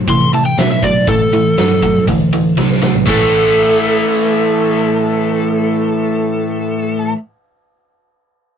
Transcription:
0.07 overdriven electric guitar A2 E3, picked electric bass C3, electric slide guitar C6, kick, closed hi-hat
0.33 overdriven electric guitar A2 E3, electric slide guitar A5, closed hi-hat
0.46 electric slide guitar G5
0.58 overdriven electric guitar A2 F#3, picked electric bass B2, electric slide guitar E5, snare, closed hi-hat
0.72 electric slide guitar E5
0.83 overdriven electric guitar A2 F#3, electric slide guitar D5, kick, closed hi-hat
1.07 overdriven electric guitar A2 E3, picked electric bass A2, electric slide guitar A4, kick, closed hi-hat
1.32 overdriven electric guitar A2 E3, closed hi-hat
1.57 picked electric bass G2, overdriven electric guitar A2 F#3, snare, closed hi-hat
1.82 overdriven electric guitar A2 F#3, kick, closed hi-hat
2.07 picked electric bass D2, overdriven electric guitar A2 E3, kick, closed hi-hat
2.33 overdriven electric guitar A2 E3, closed hi-hat
2.57 picked electric bass C2, overdriven electric guitar A2 F#3, snare
2.72 snare
2.82 overdriven electric guitar A2 F#3, snare
2.95 floor tom
3.06 picked electric bass A1, overdriven electric guitar A2 E3, electric slide guitar A4, kick, crash
3.10 overdriven electric guitar A3

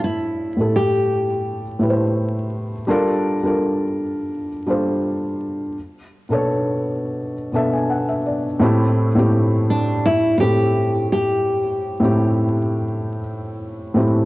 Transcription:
Already playing: felt piano A2 A3 E4 G4 A4
0.04 nylon-string guitar E4
0.57 felt piano A2 A3 E4 G4
0.61 felt piano A4
0.76 nylon-string guitar G4
1.79 felt piano A2 A3 E4 G4 B4
1.90 felt piano C5
2.87 felt piano G3 D4 F4 A4 A#4
3.43 felt piano G3 D4 F4 A4
3.47 felt piano A#4
4.66 felt piano G3 D4 F4 A4 C5
6.29 felt piano B2 B3 D4 A4 C#5
7.52 felt piano B2 B3 D4 A4 A5
7.56 felt piano E5
7.73 felt piano G#5
7.90 felt piano F#5
8.09 felt piano E5
8.26 felt piano D5
8.59 felt piano A2 A3 C4 E4 G4
9.15 felt piano A2 A3 C4 E4 G4
9.70 nylon-string guitar D4
10.06 nylon-string guitar E4
10.38 felt piano A2 A3 C4 E4, nylon-string guitar G4
10.42 felt piano A4
11.12 nylon-string guitar G4
12.00 felt piano A2 A3 C4 E4
12.04 felt piano G4
13.94 felt piano A2 A3 C4 E4
13.98 felt piano G4

